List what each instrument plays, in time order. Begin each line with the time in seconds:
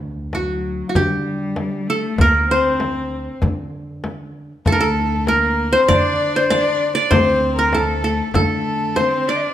Already playing: upright bass D2
0.33 cello F#3, qanun F#4, frame drum
0.89 qanun F#4
0.95 upright bass D3, cello F#3, qanun G4, frame drum
1.07 cello G3
1.56 frame drum
1.88 cello A3, qanun A4
2.18 upright bass D2, cello A#3, qanun A#4, frame drum
2.49 cello C4, qanun C5
2.80 frame drum
3.42 upright bass D3, frame drum
4.04 frame drum
4.65 upright bass D2, cello A3, violin A4, qanun A4, frame drum
4.72 qanun A#4
4.80 cello A3, violin A4, qanun A4
5.26 cello A#3, violin A#4, qanun A#4, frame drum
5.72 cello C4, violin C5, qanun C5
5.88 upright bass D3, cello D4, violin D5, qanun D5, frame drum
6.36 qanun C5
6.49 cello D4, violin D5, qanun D5, frame drum
6.95 cello D4, qanun D5, violin D5
7.11 upright bass D2, cello C4, qanun C5, violin C5, frame drum
7.56 violin A#4, qanun A#4
7.72 cello A3, violin A4, qanun A4, frame drum
8.04 cello A3, qanun A4
8.34 upright bass D3, cello A3, violin A4, qanun A4, frame drum
8.96 cello C4, qanun C5, violin C5, frame drum
9.27 cello D4, violin D5, qanun D5
9.36 violin D#5
9.41 violin D5